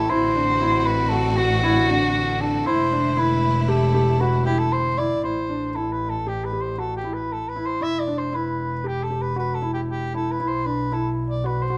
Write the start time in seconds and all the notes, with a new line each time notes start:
Already playing: A4
0.08 A1 D3 C4 E4 F#4 C5
0.36 D4
0.61 E4
0.86 B4
1.09 F#4 A4
1.37 F#4
1.63 E4
1.89 D4
2.40 D4 A4
2.66 E1 A3 E4 C5
2.92 D4
3.17 E4 B4
3.63 B4
3.68 G4 A4
3.94 G4
4.20 F#4 B4
4.45 E4 G4
4.59 A4
4.72 C5
4.98 E4 D5
5.22 A1 E4 C5
5.49 D4
5.75 E4 A4
5.92 B4
6.09 A4
6.26 G4
6.44 B4
6.53 G4
6.61 C5
6.78 F#4 A4
6.96 G4
7.04 E4
7.14 B4
7.32 A4
7.49 B4
7.56 E4
7.66 C5
7.80 E1 E4 E5
8.00 D5
8.08 D4
8.18 C5
8.33 E4 B4
8.84 G4
9.03 A4
9.10 G4
9.21 B4
9.36 F#4 B4
9.55 A4
9.62 E4
9.73 G4
9.88 G4
10.14 E4 A4
10.31 B4
10.39 B1 E4
10.48 C5
10.65 D4 B4
10.92 E4 A4
11.27 D5
11.44 F#4 B4
11.62 C5
11.70 F#4